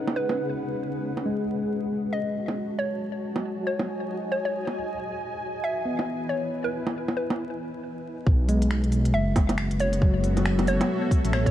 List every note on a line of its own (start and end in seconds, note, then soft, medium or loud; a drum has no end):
0.00 2.68 C#4 medium
0.00 0.49 D#4 medium
0.00 1.26 G#4 medium
0.00 2.68 B4 medium
0.00 1.26 F#5 medium
0.08 low bongo medium
0.16 0.60 B4 medium
0.29 low bongo medium
1.17 low bongo soft
1.26 2.03 G#3 medium
1.26 6.02 F#4 medium
1.64 4.76 A5 medium
1.72 7.83 D#5 medium
1.99 7.83 G#5 medium
2.13 2.36 D#5 medium
2.48 low bongo soft
2.79 3.02 C#5 medium
3.36 low bongo soft
3.67 3.90 C#5 medium
3.79 low bongo medium
4.32 4.43 C#5 medium
4.45 4.81 C#5 medium
4.67 low bongo soft
4.76 7.83 E4 medium
4.97 7.83 B4 medium
5.64 5.87 E5 medium
5.85 6.62 B3 medium
5.99 low bongo soft
6.29 6.53 C#5 medium
6.64 6.87 B4 medium
6.87 low bongo soft
7.08 low bongo medium
7.17 7.61 B4 medium
7.30 low bongo medium
8.26 9.13 B1 loud
8.26 11.51 B3 medium
8.26 kick loud
8.49 9.25 G#3 medium
8.49 open hi-hat medium
8.62 11.51 F#4 loud
8.62 11.51 E5 medium
8.62 closed hi-hat medium
8.71 finger snap loud
8.84 closed hi-hat soft
8.92 open hi-hat medium
9.05 closed hi-hat medium
9.14 9.70 F#1 medium
9.14 9.37 E5 medium
9.27 11.51 A4 medium
9.36 kick loud
9.36 open hi-hat medium
9.36 low bongo medium
9.49 closed hi-hat medium
9.49 low bongo medium
9.58 finger snap loud
9.71 10.44 F#1 medium
9.71 closed hi-hat soft
9.80 10.03 C#5 medium
9.80 open hi-hat medium
9.93 closed hi-hat medium
10.02 10.79 F#3 medium
10.02 kick loud
10.24 open hi-hat medium
10.37 closed hi-hat medium
10.37 low bongo medium
10.45 10.79 F#1 medium
10.45 finger snap loud
10.59 closed hi-hat soft
10.59 low bongo medium
10.67 10.91 C#5 medium
10.67 open hi-hat medium
10.81 closed hi-hat medium
10.81 low bongo medium
11.11 kick loud
11.11 open hi-hat medium
11.24 11.51 A1 medium
11.24 closed hi-hat medium
11.33 11.44 C#5 medium
11.33 finger snap loud
11.46 11.51 C#5 medium
11.46 kick loud
11.46 closed hi-hat soft